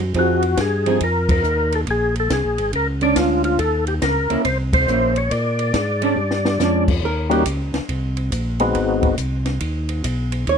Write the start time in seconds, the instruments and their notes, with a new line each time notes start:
Already playing: tonewheel organ F#2
0.14 tonewheel organ F2, hollow-body jazz guitar F3 C4 D#4 G#4, kick, ride
0.19 tonewheel organ F#4
0.43 ride
0.57 tonewheel organ G2 G#4, kick, snare, hi-hat pedal, ride
0.86 hollow-body jazz guitar F3 C4 D#4 G#4, ride
1.01 tonewheel organ F2 A#4, kick, ride
1.29 tonewheel organ A#4, kick, ride
1.43 tonewheel organ D#2, hi-hat pedal
1.72 tonewheel organ A4, ride
1.87 tonewheel organ A#1 G#4, kick, ride
2.16 ride
2.20 tonewheel organ A4
2.30 tonewheel organ C2 G#4, kick, snare, hi-hat pedal, ride
2.45 tonewheel organ A#1
2.58 tonewheel organ G#1, ride
2.73 tonewheel organ C#2 A#4, kick, ride
3.01 hollow-body jazz guitar G#3 C#4 D4, tonewheel organ D5, ride
3.16 tonewheel organ D2 F4, kick, snare, hi-hat pedal, ride
3.44 tonewheel organ F4, ride
3.59 tonewheel organ D#2 A4, kick, ride
3.87 tonewheel organ G4, ride
4.02 tonewheel organ C#2 A#4, kick, snare, hi-hat pedal, ride
4.30 tonewheel organ C#2, hollow-body jazz guitar A#3 C#4 E4, ride
4.45 tonewheel organ C2 C5, kick, ride
4.73 tonewheel organ C5, kick, ride
4.88 tonewheel organ A#1, hollow-body jazz guitar A#3 C#4 E4, hi-hat pedal
5.16 tonewheel organ C#5, ride
5.31 tonewheel organ A#2 D5, kick, ride
5.59 ride
5.74 tonewheel organ G#2, kick, snare, hi-hat pedal, ride
6.02 hollow-body jazz guitar G#3 C#4 D4, ride
6.17 tonewheel organ G2
6.31 snare
6.45 snare
6.59 tonewheel organ F2, hollow-body jazz guitar G#3 C#4 D4, snare, hi-hat pedal
6.88 kick, crash
7.03 tonewheel organ D#2, hollow-body jazz guitar A#4, kick
7.30 tonewheel organ G3 A#3 C#4 D#4 F#4, hollow-body jazz guitar G4, ride
7.46 tonewheel organ C#2, kick, hi-hat pedal, ride
7.73 tonewheel organ C#2, snare, ride
7.89 tonewheel organ C2, kick, ride
8.17 ride
8.32 tonewheel organ A#1, kick, hi-hat pedal, ride
8.60 tonewheel organ G#3 B3 C4 D#4 F#4, ride
8.75 tonewheel organ G#1, kick, ride
9.03 kick, ride
9.18 tonewheel organ C2, kick, hi-hat pedal, ride
9.46 snare, ride
9.60 tonewheel organ D#2, kick, ride
9.89 ride
10.04 tonewheel organ B1, kick, hi-hat pedal, ride
10.32 ride
10.47 tonewheel organ D#2, hollow-body jazz guitar C#5, kick, ride